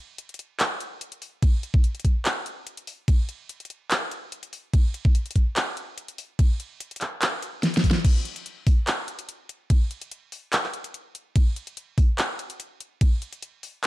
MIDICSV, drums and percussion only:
0, 0, Header, 1, 2, 480
1, 0, Start_track
1, 0, Tempo, 413793
1, 1653, Time_signature, 4, 2, 24, 8
1, 16083, End_track
2, 0, Start_track
2, 0, Title_t, "Drums"
2, 213, Note_on_c, 9, 42, 80
2, 329, Note_off_c, 9, 42, 0
2, 338, Note_on_c, 9, 42, 46
2, 396, Note_off_c, 9, 42, 0
2, 396, Note_on_c, 9, 42, 62
2, 454, Note_off_c, 9, 42, 0
2, 454, Note_on_c, 9, 42, 64
2, 570, Note_off_c, 9, 42, 0
2, 694, Note_on_c, 9, 39, 127
2, 694, Note_on_c, 9, 42, 78
2, 694, Note_on_c, 9, 49, 39
2, 810, Note_off_c, 9, 39, 0
2, 810, Note_off_c, 9, 42, 0
2, 810, Note_off_c, 9, 49, 0
2, 933, Note_on_c, 9, 42, 71
2, 1049, Note_off_c, 9, 42, 0
2, 1173, Note_on_c, 9, 42, 79
2, 1289, Note_off_c, 9, 42, 0
2, 1298, Note_on_c, 9, 42, 66
2, 1413, Note_on_c, 9, 46, 91
2, 1414, Note_off_c, 9, 42, 0
2, 1529, Note_off_c, 9, 46, 0
2, 1653, Note_on_c, 9, 36, 125
2, 1653, Note_on_c, 9, 42, 77
2, 1653, Note_on_c, 9, 49, 51
2, 1769, Note_off_c, 9, 36, 0
2, 1769, Note_off_c, 9, 42, 0
2, 1769, Note_off_c, 9, 49, 0
2, 1893, Note_on_c, 9, 42, 64
2, 2009, Note_off_c, 9, 42, 0
2, 2018, Note_on_c, 9, 36, 113
2, 2133, Note_on_c, 9, 42, 76
2, 2134, Note_off_c, 9, 36, 0
2, 2249, Note_off_c, 9, 42, 0
2, 2258, Note_on_c, 9, 42, 45
2, 2315, Note_off_c, 9, 42, 0
2, 2315, Note_on_c, 9, 42, 59
2, 2373, Note_off_c, 9, 42, 0
2, 2373, Note_on_c, 9, 36, 65
2, 2373, Note_on_c, 9, 42, 66
2, 2489, Note_off_c, 9, 36, 0
2, 2489, Note_off_c, 9, 42, 0
2, 2613, Note_on_c, 9, 39, 117
2, 2613, Note_on_c, 9, 42, 75
2, 2613, Note_on_c, 9, 49, 38
2, 2729, Note_off_c, 9, 39, 0
2, 2729, Note_off_c, 9, 42, 0
2, 2729, Note_off_c, 9, 49, 0
2, 2853, Note_on_c, 9, 42, 65
2, 2969, Note_off_c, 9, 42, 0
2, 3093, Note_on_c, 9, 42, 77
2, 3209, Note_off_c, 9, 42, 0
2, 3217, Note_on_c, 9, 42, 62
2, 3333, Note_off_c, 9, 42, 0
2, 3333, Note_on_c, 9, 46, 92
2, 3449, Note_off_c, 9, 46, 0
2, 3573, Note_on_c, 9, 36, 122
2, 3573, Note_on_c, 9, 42, 80
2, 3573, Note_on_c, 9, 49, 51
2, 3689, Note_off_c, 9, 36, 0
2, 3689, Note_off_c, 9, 42, 0
2, 3689, Note_off_c, 9, 49, 0
2, 3813, Note_on_c, 9, 42, 65
2, 3929, Note_off_c, 9, 42, 0
2, 4053, Note_on_c, 9, 42, 77
2, 4169, Note_off_c, 9, 42, 0
2, 4177, Note_on_c, 9, 42, 46
2, 4235, Note_off_c, 9, 42, 0
2, 4235, Note_on_c, 9, 42, 58
2, 4293, Note_off_c, 9, 42, 0
2, 4293, Note_on_c, 9, 42, 60
2, 4409, Note_off_c, 9, 42, 0
2, 4533, Note_on_c, 9, 39, 119
2, 4533, Note_on_c, 9, 42, 75
2, 4533, Note_on_c, 9, 49, 41
2, 4649, Note_off_c, 9, 39, 0
2, 4649, Note_off_c, 9, 42, 0
2, 4649, Note_off_c, 9, 49, 0
2, 4773, Note_on_c, 9, 42, 66
2, 4889, Note_off_c, 9, 42, 0
2, 5013, Note_on_c, 9, 42, 77
2, 5129, Note_off_c, 9, 42, 0
2, 5137, Note_on_c, 9, 42, 62
2, 5252, Note_on_c, 9, 46, 92
2, 5253, Note_off_c, 9, 42, 0
2, 5368, Note_off_c, 9, 46, 0
2, 5492, Note_on_c, 9, 42, 81
2, 5492, Note_on_c, 9, 49, 53
2, 5493, Note_on_c, 9, 36, 117
2, 5608, Note_off_c, 9, 42, 0
2, 5608, Note_off_c, 9, 49, 0
2, 5609, Note_off_c, 9, 36, 0
2, 5732, Note_on_c, 9, 42, 67
2, 5848, Note_off_c, 9, 42, 0
2, 5857, Note_on_c, 9, 36, 102
2, 5972, Note_on_c, 9, 42, 78
2, 5973, Note_off_c, 9, 36, 0
2, 6088, Note_off_c, 9, 42, 0
2, 6097, Note_on_c, 9, 42, 50
2, 6155, Note_off_c, 9, 42, 0
2, 6155, Note_on_c, 9, 42, 65
2, 6212, Note_off_c, 9, 42, 0
2, 6212, Note_on_c, 9, 42, 64
2, 6213, Note_on_c, 9, 36, 59
2, 6328, Note_off_c, 9, 42, 0
2, 6329, Note_off_c, 9, 36, 0
2, 6453, Note_on_c, 9, 39, 118
2, 6453, Note_on_c, 9, 42, 77
2, 6453, Note_on_c, 9, 49, 42
2, 6569, Note_off_c, 9, 39, 0
2, 6569, Note_off_c, 9, 42, 0
2, 6569, Note_off_c, 9, 49, 0
2, 6692, Note_on_c, 9, 42, 67
2, 6808, Note_off_c, 9, 42, 0
2, 6932, Note_on_c, 9, 42, 80
2, 7048, Note_off_c, 9, 42, 0
2, 7057, Note_on_c, 9, 42, 65
2, 7172, Note_on_c, 9, 46, 99
2, 7173, Note_off_c, 9, 42, 0
2, 7288, Note_off_c, 9, 46, 0
2, 7413, Note_on_c, 9, 36, 120
2, 7413, Note_on_c, 9, 42, 84
2, 7413, Note_on_c, 9, 49, 53
2, 7529, Note_off_c, 9, 36, 0
2, 7529, Note_off_c, 9, 42, 0
2, 7529, Note_off_c, 9, 49, 0
2, 7653, Note_on_c, 9, 42, 66
2, 7769, Note_off_c, 9, 42, 0
2, 7893, Note_on_c, 9, 42, 83
2, 8009, Note_off_c, 9, 42, 0
2, 8017, Note_on_c, 9, 42, 51
2, 8075, Note_off_c, 9, 42, 0
2, 8075, Note_on_c, 9, 42, 66
2, 8133, Note_off_c, 9, 42, 0
2, 8133, Note_on_c, 9, 39, 58
2, 8133, Note_on_c, 9, 42, 65
2, 8249, Note_off_c, 9, 39, 0
2, 8249, Note_off_c, 9, 42, 0
2, 8373, Note_on_c, 9, 39, 115
2, 8373, Note_on_c, 9, 42, 83
2, 8373, Note_on_c, 9, 49, 44
2, 8489, Note_off_c, 9, 39, 0
2, 8489, Note_off_c, 9, 42, 0
2, 8489, Note_off_c, 9, 49, 0
2, 8612, Note_on_c, 9, 42, 68
2, 8728, Note_off_c, 9, 42, 0
2, 8852, Note_on_c, 9, 38, 70
2, 8852, Note_on_c, 9, 42, 80
2, 8968, Note_off_c, 9, 38, 0
2, 8968, Note_off_c, 9, 42, 0
2, 8977, Note_on_c, 9, 42, 66
2, 9013, Note_on_c, 9, 38, 87
2, 9093, Note_off_c, 9, 42, 0
2, 9093, Note_on_c, 9, 36, 60
2, 9093, Note_on_c, 9, 46, 106
2, 9129, Note_off_c, 9, 38, 0
2, 9173, Note_on_c, 9, 38, 97
2, 9209, Note_off_c, 9, 36, 0
2, 9209, Note_off_c, 9, 46, 0
2, 9289, Note_off_c, 9, 38, 0
2, 9333, Note_on_c, 9, 36, 122
2, 9333, Note_on_c, 9, 42, 87
2, 9333, Note_on_c, 9, 49, 50
2, 9333, Note_on_c, 9, 57, 106
2, 9449, Note_off_c, 9, 36, 0
2, 9449, Note_off_c, 9, 42, 0
2, 9449, Note_off_c, 9, 49, 0
2, 9449, Note_off_c, 9, 57, 0
2, 9573, Note_on_c, 9, 42, 72
2, 9689, Note_off_c, 9, 42, 0
2, 9697, Note_on_c, 9, 42, 69
2, 9813, Note_off_c, 9, 42, 0
2, 9813, Note_on_c, 9, 42, 83
2, 9929, Note_off_c, 9, 42, 0
2, 10053, Note_on_c, 9, 36, 108
2, 10053, Note_on_c, 9, 46, 99
2, 10169, Note_off_c, 9, 36, 0
2, 10169, Note_off_c, 9, 46, 0
2, 10293, Note_on_c, 9, 39, 117
2, 10293, Note_on_c, 9, 42, 85
2, 10293, Note_on_c, 9, 49, 41
2, 10409, Note_off_c, 9, 39, 0
2, 10409, Note_off_c, 9, 42, 0
2, 10409, Note_off_c, 9, 49, 0
2, 10532, Note_on_c, 9, 42, 73
2, 10648, Note_off_c, 9, 42, 0
2, 10657, Note_on_c, 9, 42, 70
2, 10772, Note_off_c, 9, 42, 0
2, 10772, Note_on_c, 9, 42, 84
2, 10888, Note_off_c, 9, 42, 0
2, 11012, Note_on_c, 9, 42, 71
2, 11128, Note_off_c, 9, 42, 0
2, 11252, Note_on_c, 9, 42, 82
2, 11252, Note_on_c, 9, 49, 47
2, 11253, Note_on_c, 9, 36, 127
2, 11368, Note_off_c, 9, 42, 0
2, 11368, Note_off_c, 9, 49, 0
2, 11369, Note_off_c, 9, 36, 0
2, 11493, Note_on_c, 9, 42, 70
2, 11609, Note_off_c, 9, 42, 0
2, 11618, Note_on_c, 9, 42, 68
2, 11733, Note_off_c, 9, 42, 0
2, 11733, Note_on_c, 9, 42, 86
2, 11849, Note_off_c, 9, 42, 0
2, 11973, Note_on_c, 9, 46, 92
2, 12089, Note_off_c, 9, 46, 0
2, 12213, Note_on_c, 9, 39, 126
2, 12213, Note_on_c, 9, 42, 86
2, 12213, Note_on_c, 9, 49, 39
2, 12329, Note_off_c, 9, 39, 0
2, 12329, Note_off_c, 9, 42, 0
2, 12329, Note_off_c, 9, 49, 0
2, 12338, Note_on_c, 9, 39, 39
2, 12453, Note_on_c, 9, 42, 75
2, 12454, Note_off_c, 9, 39, 0
2, 12569, Note_off_c, 9, 42, 0
2, 12578, Note_on_c, 9, 42, 74
2, 12693, Note_off_c, 9, 42, 0
2, 12693, Note_on_c, 9, 42, 87
2, 12809, Note_off_c, 9, 42, 0
2, 12934, Note_on_c, 9, 42, 74
2, 13050, Note_off_c, 9, 42, 0
2, 13173, Note_on_c, 9, 42, 88
2, 13173, Note_on_c, 9, 49, 47
2, 13174, Note_on_c, 9, 36, 127
2, 13289, Note_off_c, 9, 42, 0
2, 13289, Note_off_c, 9, 49, 0
2, 13290, Note_off_c, 9, 36, 0
2, 13413, Note_on_c, 9, 42, 68
2, 13529, Note_off_c, 9, 42, 0
2, 13538, Note_on_c, 9, 42, 64
2, 13653, Note_off_c, 9, 42, 0
2, 13653, Note_on_c, 9, 42, 83
2, 13769, Note_off_c, 9, 42, 0
2, 13893, Note_on_c, 9, 46, 91
2, 13894, Note_on_c, 9, 36, 118
2, 14009, Note_off_c, 9, 46, 0
2, 14010, Note_off_c, 9, 36, 0
2, 14133, Note_on_c, 9, 39, 121
2, 14133, Note_on_c, 9, 42, 81
2, 14133, Note_on_c, 9, 49, 39
2, 14249, Note_off_c, 9, 39, 0
2, 14249, Note_off_c, 9, 42, 0
2, 14249, Note_off_c, 9, 49, 0
2, 14373, Note_on_c, 9, 42, 67
2, 14489, Note_off_c, 9, 42, 0
2, 14498, Note_on_c, 9, 42, 72
2, 14613, Note_off_c, 9, 42, 0
2, 14613, Note_on_c, 9, 42, 82
2, 14729, Note_off_c, 9, 42, 0
2, 14853, Note_on_c, 9, 42, 71
2, 14969, Note_off_c, 9, 42, 0
2, 15093, Note_on_c, 9, 36, 127
2, 15093, Note_on_c, 9, 42, 81
2, 15093, Note_on_c, 9, 49, 45
2, 15209, Note_off_c, 9, 36, 0
2, 15209, Note_off_c, 9, 42, 0
2, 15209, Note_off_c, 9, 49, 0
2, 15333, Note_on_c, 9, 42, 64
2, 15449, Note_off_c, 9, 42, 0
2, 15457, Note_on_c, 9, 42, 62
2, 15572, Note_off_c, 9, 42, 0
2, 15572, Note_on_c, 9, 42, 80
2, 15688, Note_off_c, 9, 42, 0
2, 15812, Note_on_c, 9, 46, 91
2, 15928, Note_off_c, 9, 46, 0
2, 16083, End_track
0, 0, End_of_file